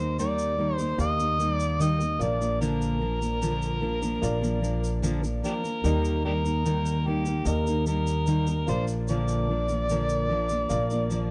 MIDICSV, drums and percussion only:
0, 0, Header, 1, 2, 480
1, 0, Start_track
1, 0, Key_signature, -3, "major"
1, 0, Tempo, 809717
1, 1545, Time_signature, 4, 2, 24, 8
1, 6703, End_track
2, 0, Start_track
2, 0, Title_t, "Drums"
2, 114, Note_on_c, 9, 82, 62
2, 173, Note_off_c, 9, 82, 0
2, 229, Note_on_c, 9, 82, 50
2, 288, Note_off_c, 9, 82, 0
2, 466, Note_on_c, 9, 82, 51
2, 525, Note_off_c, 9, 82, 0
2, 588, Note_on_c, 9, 82, 66
2, 648, Note_off_c, 9, 82, 0
2, 710, Note_on_c, 9, 82, 47
2, 769, Note_off_c, 9, 82, 0
2, 829, Note_on_c, 9, 82, 49
2, 888, Note_off_c, 9, 82, 0
2, 948, Note_on_c, 9, 82, 53
2, 1007, Note_off_c, 9, 82, 0
2, 1070, Note_on_c, 9, 82, 76
2, 1129, Note_off_c, 9, 82, 0
2, 1189, Note_on_c, 9, 82, 42
2, 1248, Note_off_c, 9, 82, 0
2, 1310, Note_on_c, 9, 82, 46
2, 1369, Note_off_c, 9, 82, 0
2, 1432, Note_on_c, 9, 82, 47
2, 1492, Note_off_c, 9, 82, 0
2, 1552, Note_on_c, 9, 82, 60
2, 1611, Note_off_c, 9, 82, 0
2, 1669, Note_on_c, 9, 82, 47
2, 1729, Note_off_c, 9, 82, 0
2, 1908, Note_on_c, 9, 82, 45
2, 1968, Note_off_c, 9, 82, 0
2, 2029, Note_on_c, 9, 82, 58
2, 2088, Note_off_c, 9, 82, 0
2, 2146, Note_on_c, 9, 82, 50
2, 2206, Note_off_c, 9, 82, 0
2, 2385, Note_on_c, 9, 82, 50
2, 2444, Note_off_c, 9, 82, 0
2, 2508, Note_on_c, 9, 82, 67
2, 2568, Note_off_c, 9, 82, 0
2, 2631, Note_on_c, 9, 82, 46
2, 2690, Note_off_c, 9, 82, 0
2, 2750, Note_on_c, 9, 82, 51
2, 2810, Note_off_c, 9, 82, 0
2, 2869, Note_on_c, 9, 82, 57
2, 2928, Note_off_c, 9, 82, 0
2, 2986, Note_on_c, 9, 82, 79
2, 3045, Note_off_c, 9, 82, 0
2, 3106, Note_on_c, 9, 82, 43
2, 3165, Note_off_c, 9, 82, 0
2, 3227, Note_on_c, 9, 82, 49
2, 3287, Note_off_c, 9, 82, 0
2, 3347, Note_on_c, 9, 82, 47
2, 3407, Note_off_c, 9, 82, 0
2, 3466, Note_on_c, 9, 82, 57
2, 3525, Note_off_c, 9, 82, 0
2, 3585, Note_on_c, 9, 82, 49
2, 3644, Note_off_c, 9, 82, 0
2, 3826, Note_on_c, 9, 82, 44
2, 3885, Note_off_c, 9, 82, 0
2, 3947, Note_on_c, 9, 82, 59
2, 4006, Note_off_c, 9, 82, 0
2, 4065, Note_on_c, 9, 82, 50
2, 4125, Note_off_c, 9, 82, 0
2, 4301, Note_on_c, 9, 82, 50
2, 4360, Note_off_c, 9, 82, 0
2, 4420, Note_on_c, 9, 82, 65
2, 4480, Note_off_c, 9, 82, 0
2, 4545, Note_on_c, 9, 82, 49
2, 4604, Note_off_c, 9, 82, 0
2, 4662, Note_on_c, 9, 82, 50
2, 4721, Note_off_c, 9, 82, 0
2, 4783, Note_on_c, 9, 82, 54
2, 4842, Note_off_c, 9, 82, 0
2, 4901, Note_on_c, 9, 82, 81
2, 4960, Note_off_c, 9, 82, 0
2, 5020, Note_on_c, 9, 82, 43
2, 5080, Note_off_c, 9, 82, 0
2, 5144, Note_on_c, 9, 82, 48
2, 5203, Note_off_c, 9, 82, 0
2, 5261, Note_on_c, 9, 82, 48
2, 5320, Note_off_c, 9, 82, 0
2, 5382, Note_on_c, 9, 82, 64
2, 5441, Note_off_c, 9, 82, 0
2, 5502, Note_on_c, 9, 82, 49
2, 5562, Note_off_c, 9, 82, 0
2, 5741, Note_on_c, 9, 82, 43
2, 5801, Note_off_c, 9, 82, 0
2, 5864, Note_on_c, 9, 82, 62
2, 5923, Note_off_c, 9, 82, 0
2, 5982, Note_on_c, 9, 82, 48
2, 6042, Note_off_c, 9, 82, 0
2, 6218, Note_on_c, 9, 82, 51
2, 6278, Note_off_c, 9, 82, 0
2, 6342, Note_on_c, 9, 82, 62
2, 6401, Note_off_c, 9, 82, 0
2, 6463, Note_on_c, 9, 82, 47
2, 6522, Note_off_c, 9, 82, 0
2, 6583, Note_on_c, 9, 82, 48
2, 6643, Note_off_c, 9, 82, 0
2, 6703, End_track
0, 0, End_of_file